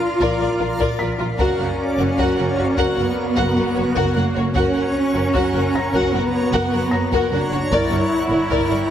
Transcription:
0.00 0.59 F4 medium
0.00 1.36 A#4 medium
0.00 1.36 D5 medium
0.00 1.36 F5 medium
0.20 0.29 A#1 medium
0.20 0.38 F4 medium
0.20 0.39 A#4 medium
0.20 0.39 D5 medium
0.20 taiko medium
0.39 0.49 A#1 soft
0.39 0.47 F4 soft
0.39 0.48 A#4 medium
0.39 0.48 D5 medium
0.59 0.68 A#1 soft
0.59 0.67 F4 medium
0.59 0.67 F4 soft
0.59 0.68 A#4 soft
0.79 0.88 A#1 medium
0.79 0.98 F4 medium
0.79 0.97 A#4 medium
0.79 0.98 D5 medium
0.79 taiko medium
0.98 1.08 A#1 soft
0.98 1.07 F4 soft
0.98 1.06 A#4 medium
0.98 1.07 D5 soft
0.98 3.32 B6 medium
1.18 1.28 A#1 soft
1.18 1.26 F4 medium
1.18 1.27 F4 medium
1.18 1.27 A#4 medium
1.39 1.47 F#1 medium
1.39 2.93 C#4 medium
1.39 1.58 F#4 medium
1.39 1.57 A#4 medium
1.39 4.51 A#4 medium
1.39 4.54 C#5 medium
1.39 1.57 F#5 medium
1.39 4.54 F#5 medium
1.39 taiko medium
1.58 1.67 F#1 soft
1.58 1.67 F#4 soft
1.58 1.66 A#4 soft
1.58 1.67 F#5 soft
1.98 2.07 F#1 medium
1.98 2.06 F#4 soft
1.98 2.06 A#4 soft
1.98 2.06 F#5 soft
2.17 2.26 F#1 medium
2.17 2.36 F#4 medium
2.17 2.36 A#4 medium
2.17 2.36 F#5 medium
2.17 taiko medium
2.37 2.46 F#1 medium
2.37 2.46 F#4 soft
2.37 2.46 A#4 soft
2.37 2.45 F#5 soft
2.57 2.65 F#1 soft
2.57 2.66 F#4 medium
2.57 2.66 F#4 soft
2.57 2.65 C#5 soft
2.77 2.85 F#1 medium
2.77 2.95 F#4 medium
2.77 2.95 A#4 medium
2.77 2.96 F#5 medium
2.77 taiko medium
2.96 3.05 F#1 soft
2.96 4.16 B3 medium
2.96 3.04 F#4 medium
2.96 3.04 A#4 medium
2.96 3.06 F#5 medium
3.36 3.44 F#1 medium
3.36 3.54 F#4 medium
3.36 3.55 A#4 medium
3.36 3.55 F#5 medium
3.36 taiko medium
3.55 3.64 F#1 soft
3.55 3.63 F#4 medium
3.55 3.65 A#4 soft
3.55 3.64 F#5 soft
3.75 3.84 F#1 medium
3.75 3.83 F#4 medium
3.75 3.85 F#4 medium
3.75 3.84 C#5 soft
3.95 4.04 F#1 medium
3.95 4.13 F#4 medium
3.95 4.14 A#4 medium
3.95 4.14 F#5 medium
3.95 taiko medium
4.14 4.24 F#1 soft
4.14 4.55 A#3 medium
4.14 4.22 F#4 medium
4.14 4.24 A#4 soft
4.14 4.24 F#5 medium
4.34 4.44 F#1 medium
4.34 4.42 F#4 medium
4.34 4.44 F#4 medium
4.34 4.43 C#5 medium
4.55 4.63 F#1 medium
4.55 6.10 C#4 medium
4.55 4.72 F#4 medium
4.55 4.74 A#4 medium
4.55 7.67 C#5 medium
4.55 7.67 F#5 medium
4.55 4.74 F#5 medium
4.55 7.67 A#5 medium
4.55 taiko medium
4.74 4.83 F#1 soft
4.74 4.82 F#4 soft
4.74 4.83 A#4 soft
4.74 4.83 F#5 soft
5.13 5.22 F#1 medium
5.13 5.21 F#4 medium
5.13 5.23 A#4 soft
5.13 5.22 F#5 soft
5.34 5.42 F#1 medium
5.34 5.52 F#4 medium
5.34 5.53 A#4 medium
5.34 5.52 F#5 medium
5.34 taiko medium
5.53 5.62 F#1 medium
5.53 5.61 F#4 medium
5.53 5.62 A#4 medium
5.53 5.62 F#5 medium
5.74 5.82 F#1 soft
5.74 5.82 F#4 soft
5.74 5.83 C#5 medium
5.74 6.90 A#5 soft
5.74 6.90 A#6 medium
5.93 6.01 F#1 medium
5.93 6.12 F#4 medium
5.93 6.12 A#4 medium
5.93 6.12 F#5 medium
5.93 taiko medium
6.13 6.21 F#1 medium
6.13 7.31 B3 medium
6.13 6.21 F#4 medium
6.13 6.21 A#4 medium
6.13 6.22 F#5 medium
6.52 6.60 F#1 medium
6.52 6.71 F#4 medium
6.52 6.71 A#4 medium
6.52 6.71 F#5 medium
6.52 taiko medium
6.72 6.80 F#1 medium
6.72 6.81 F#4 medium
6.72 6.80 A#4 medium
6.72 6.81 F#5 medium
6.91 7.00 F#1 medium
6.91 7.00 F#4 soft
6.91 7.00 F#4 medium
6.91 7.00 C#5 soft
6.91 8.90 A#5 soft
6.91 8.90 A#6 medium
7.11 7.19 F#1 medium
7.11 7.31 F#4 medium
7.11 7.30 A#4 medium
7.11 7.30 F#5 medium
7.11 taiko medium
7.31 7.39 F#1 medium
7.31 7.71 D4 medium
7.31 7.40 F#4 medium
7.31 7.39 A#4 medium
7.31 7.40 F#5 medium
7.51 7.59 F#1 medium
7.51 7.59 F#4 medium
7.51 7.60 F#4 medium
7.51 7.60 C#5 medium
7.71 7.79 G1 medium
7.71 8.90 E4 medium
7.71 7.89 A#4 medium
7.71 7.90 A#4 medium
7.71 8.90 D5 soft
7.71 7.90 D5 medium
7.71 8.90 G5 medium
7.71 8.90 A#5 soft
7.71 taiko medium
7.90 7.98 G1 soft
7.90 7.99 A#4 soft
7.90 7.99 A#4 medium
7.90 7.99 D5 soft
8.29 8.38 G1 medium
8.29 8.37 A#4 soft
8.29 8.39 A#4 medium
8.29 8.38 D5 soft
8.48 8.58 G1 medium
8.48 8.67 A#4 medium
8.48 8.69 A#4 medium
8.48 8.69 D5 medium
8.48 taiko medium
8.69 8.78 G1 soft
8.69 8.77 A#4 soft
8.69 8.78 A#4 soft
8.69 8.79 D5 soft

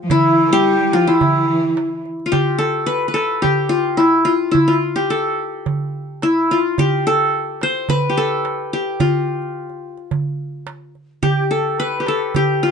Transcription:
0.00 0.10 F3 medium
0.00 0.17 F4 medium
0.10 0.52 E3 medium
0.10 0.42 E4 medium
0.10 0.99 E4 medium
0.10 darbuka dum medium
0.24 darbuka ka soft
0.46 0.53 A4 medium
0.51 0.94 G3 medium
0.51 0.95 G4 medium
0.51 1.78 G4 loud
0.51 darbuka ka soft
0.65 darbuka ka soft
0.79 darbuka ka soft
0.93 1.07 F3 medium
0.93 1.13 F4 medium
0.93 1.10 F4 medium
0.93 darbuka tek medium
1.06 2.04 E3 medium
1.06 2.32 E4 medium
1.06 2.05 E4 medium
1.06 darbuka ka soft
1.21 darbuka dum medium
1.77 darbuka tek medium
2.05 darbuka ka soft
2.20 darbuka ka soft
2.26 3.60 F4 medium
2.32 3.42 G4 medium
2.32 darbuka dum medium
2.47 darbuka ka soft
2.58 3.13 A4 medium
2.86 3.08 B4 medium
3.08 4.17 B4 medium
3.14 4.31 A4 medium
3.14 darbuka tek medium
3.42 4.68 G4 medium
3.42 darbuka dum medium
3.69 4.03 F4 medium
3.97 4.31 E4 medium
3.97 darbuka tek medium
4.25 4.57 F4 medium
4.51 4.74 E4 medium
4.51 darbuka dum medium
4.68 6.02 F4 medium
4.68 darbuka ka soft
4.96 6.21 G4 medium
5.10 6.27 A4 medium
5.66 darbuka dum medium
6.22 6.57 E4 medium
6.22 darbuka tek medium
6.51 7.86 F4 medium
6.78 8.05 G4 medium
6.78 darbuka dum medium
6.92 darbuka ka soft
7.07 8.17 A4 medium
7.61 7.96 C5 medium
7.61 darbuka tek medium
7.89 8.99 B4 medium
7.89 darbuka dum medium
8.10 8.73 G4 medium
8.17 9.35 A4 medium
8.45 darbuka tek medium
8.73 9.99 G4 medium
9.00 10.91 F4 medium
9.00 darbuka dum medium
9.14 darbuka ka soft
9.42 darbuka ka soft
9.70 darbuka ka soft
9.97 darbuka ka soft
10.11 darbuka dum medium
10.67 darbuka tek medium
10.95 darbuka ka soft
11.23 12.00 G4 medium
11.23 11.53 G4 medium
11.23 darbuka dum medium
11.51 12.08 A4 medium
11.51 11.80 A4 medium
11.78 12.09 B4 medium
11.78 12.71 B4 medium
12.00 12.36 G4 medium
12.06 12.36 A4 medium
12.06 12.71 A4 medium
12.06 darbuka tek medium
12.35 12.63 G4 medium
12.35 12.71 G4 medium
12.35 darbuka dum medium
12.62 12.71 F4 medium

